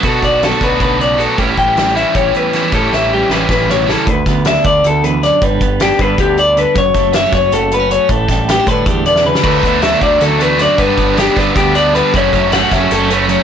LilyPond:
<<
  \new Staff \with { instrumentName = "Clean electric guitar" } { \time 7/8 \key g \lydian \tempo 4 = 156 a'8 d''8 a'8 b'8 b'8 d''8 a'8 | b'8 g''4 e''8 cis''8 b'4 | a'8 e''8 g'8 b'8 b'8 cis''8 a'8 | b'4 e''8 d''8 a'8 b'8 d''8 |
b'4 g'8 b'8 g'8 d''8 b'8 | cis''4 e''8 cis''8 a'8 b'8 cis''8 | a'4 g'8 b'8 g'8 d''8 b'8 | b'4 e''8 d''8 a'8 b'8 d''8 |
b'4 g'8 b'8 g'8 d''8 b'8 | cis''4 fis''8 e''8 a'8 b'8 cis''8 | }
  \new Staff \with { instrumentName = "Overdriven electric guitar" } { \time 7/8 \key g \lydian <b, fis b d' fis'>4. <b, fis b d' fis'>4. <b, fis b d' fis'>8 | <a, e g cis' e'>4. <a, e g cis' e'>4. <a, e g cis' e'>8 | <a, e g cis' e'>4. <a, e g cis' e'>4. <a, e g cis' e'>8 | r2. r8 |
r2. r8 | r2. r8 | r2. r8 | <d fis a d'>8 <fis a d'>8 <d fis a d'>8 <fis a d'>4 <fis a d'>8 <d fis a d'>8 |
<g, d g b d'>8 <g b d'>8 <g, d g b d'>8 <g b d'>4 <g b d'>8 <d g b d'>8 | <fis, cis fis a cis'>8 <fis a cis'>8 <fis, cis fis a cis'>8 <fis a cis'>4 <fis a cis'>8 <cis fis a cis'>8 | }
  \new Staff \with { instrumentName = "Clean electric guitar" } { \clef bass \time 7/8 \key g \lydian << { fis'4 g16 a2~ a16 | g'4 g4 g'4 g8 | g'4 g2~ g8 | r8 b8 d'2~ d'8 |
r8 b8 d'4 b8 d'4 | r8 a8 b16 cis'8. a8 b16 cis'8. | r8 g8 b16 d'2~ d'16 | r8 b8 d'2~ d'8 |
r8 b8 d'4 b8 d'4 | <fis a cis' e'>8 a8 cis'4 g16 a16 cis'4 | } \\ { <b, d>4. d8 d8 cis8 b,8 | a,4. e4 e,4 | a,4. e8 a,8 b,8 cis8 | d,4. d8 d,8 e,8 fis,8 |
g,4. d4. d8 | fis,4. fis4. fis8 | a,4. d8 a,8 b,8 cis8 | d,4. d8 d,8 e,8 fis,8 |
g,4. d4. d8 | fis,4. fis4. fis8 | } >> }
  \new Staff \with { instrumentName = "Picked electric bass" } { \clef bass \time 7/8 \key g \lydian b,8 b,,4 b,,8 b,,4. | a,,8 a,,4. a,,8 r4 | a,8 a,,4 a,,8 a,,4. | d,8 d,4 d,8 d,4. |
g,,8 g,,4 g,8 d,4. | fis,,8 fis,,4 fis,,8 fis,,4. | a,,8 a,,4 a,8 e,4. | d,8 d,4 d,8 d,4. |
g,,8 g,,4 g,8 d,4. | fis,,8 fis,,4 fis,,8 fis,,4. | }
  \new DrumStaff \with { instrumentName = "Drums" } \drummode { \time 7/8 <hh bd>8 <hh bd>8 <hh sn>8 <hh bd>8 <hh bd>8 hh8 hh8 | <hh bd>8 <hh bd>8 <hh sn>8 hh8 <hh bd>8 hh8 <hh sn>8 | <hh bd>8 sn8 r8 sn8 <bd sn>8 sn8 sn8 | <hh bd>8 <hh bd sn>8 <hh sn>8 <hh bd>8 hh8 hh8 <hh sn>8 |
<hh bd>8 <hh bd>8 <hh sn>8 <hh bd>8 <hh bd>8 hh8 hh8 | <hh bd>8 <hh bd sn>8 <hh sn>8 <hh bd sn>8 hh8 hh8 hh8 | <hh bd>8 <hh bd sn>8 <hh sn>8 <hh bd>8 <hh bd>8 hh16 sn8 sn16 | <cymc bd>8 <hh bd>8 <hh sn>8 <hh bd>8 <hh sn>8 hh8 <hh sn>8 |
<hh bd>8 <hh bd>8 <hh sn>8 <hh bd sn>8 <hh bd>8 hh8 hh8 | <hh bd>8 <hh bd>8 <hh sn>8 <hh bd sn>8 hh8 hh8 hh8 | }
>>